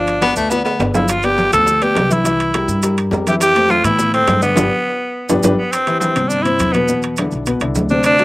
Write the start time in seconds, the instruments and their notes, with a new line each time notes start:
Already playing: upright bass G1, grand piano F3 F4 F5, tenor saxophone D4
0.07 high bongo, high conga, high timbale, maracas
0.21 grand piano B3 B4 D5, baritone saxophone B3, high bongo, high conga, high timbale, low timbale, maracas
0.36 upright bass D2, baritone saxophone A3, high bongo, maracas
0.50 baritone saxophone B3, grand piano B3 B4 D5, high bongo, high conga, high timbale, maracas
0.64 baritone saxophone B3, high conga, low timbale, maracas
0.79 upright bass G1, grand piano B3 B4 D5, high bongo, low bongo, high conga, low timbale, maracas
0.94 grand piano F3 F4 F5, tenor saxophone E4, high bongo, high conga, low timbale, maracas
1.08 tenor saxophone F4, high bongo, high conga, high timbale, maracas
1.23 grand piano B3 B4 D5, tenor saxophone G4, high conga, high timbale, maracas
1.38 high bongo, high conga, low timbale, maracas
1.52 upright bass D2, grand piano F3 F4 F5, tenor saxophone A4, high conga, low conga, high timbale, maracas
1.67 high bongo, high conga, maracas
1.81 grand piano B3 B4 D5, tenor saxophone G4, high conga, high timbale, maracas
1.95 upright bass C2, high bongo, low bongo, high conga, high timbale, low timbale, maracas
2.10 grand piano E3 E4 E5, tenor saxophone E4, high conga, maracas
2.24 grand piano E3 E4 E5, high bongo, high conga, high timbale, maracas
2.40 high bongo, high timbale, maracas
2.54 grand piano G3 G4 A#4, high bongo, high conga, high timbale, low timbale, maracas
2.68 upright bass G2, high bongo, maracas
2.83 grand piano G3 G4 A#4, high bongo, high conga, high timbale, maracas
2.98 high conga, high timbale, maracas
3.11 upright bass F2, grand piano G3 G4 A#4, high bongo, low bongo, high conga, low timbale, maracas
3.26 grand piano E3 E4 E5, tenor saxophone G4, high bongo, high conga, high timbale, maracas
3.40 tenor saxophone G4, high bongo, high conga, high timbale, maracas
3.56 grand piano A3 A4 C5, high conga, high timbale, maracas
3.69 tenor saxophone F4, high bongo, high conga, low timbale, maracas
3.84 upright bass A2, grand piano E3 E4 E5, tenor saxophone E4, high conga, low conga, high timbale, maracas
3.99 high bongo, high conga, low conga, maracas
4.13 grand piano A3 A4 C5, tenor saxophone C4, high conga, high timbale, maracas
4.27 upright bass G2, high bongo, low bongo, high conga, high timbale, low timbale, maracas
4.42 grand piano D3 D4 D5, tenor saxophone B3, high conga, maracas
4.56 upright bass G1, grand piano D4 G4 B4, low bongo, high conga, high timbale, maracas
5.29 upright bass G1, grand piano D4 G4 B4, low bongo, high conga, high timbale, maracas
5.43 upright bass G1, grand piano D4 G4 B4, low bongo, high conga, high timbale, maracas
5.58 tenor saxophone B3
5.72 tenor saxophone C4, high conga, high timbale, maracas
5.87 grand piano E3 E4 G4, high conga, high timbale, maracas
6.00 grand piano E3 E4 G4, tenor saxophone C4, high conga, maracas
6.16 upright bass G2, grand piano C3 C4 C5, high conga, low conga, high timbale, maracas
6.28 tenor saxophone D4, high conga, low conga, maracas
6.42 grand piano C3 C4 C5, tenor saxophone E4, high timbale, maracas
6.46 high conga
6.59 upright bass E2, high conga, high timbale, maracas
6.73 grand piano B2 B3 B4, tenor saxophone B3, high conga, high timbale, maracas
6.88 grand piano B2 B3 B4, maracas
7.02 high conga, high timbale, maracas
7.17 grand piano D3 D4 E4, high conga, high timbale, maracas
7.31 upright bass B1, high conga, maracas
7.46 grand piano B2 B3 B4, high conga, high timbale, maracas
7.60 upright bass C2, grand piano D3 D4 E4, high conga, high timbale, maracas
7.75 upright bass D2, high conga, low timbale, maracas
7.89 grand piano C3 C4 C5, tenor saxophone D4, high conga, maracas
8.03 tenor saxophone D4, high conga, high timbale, maracas
8.18 grand piano F#3 F#4 A4, high conga, high timbale, maracas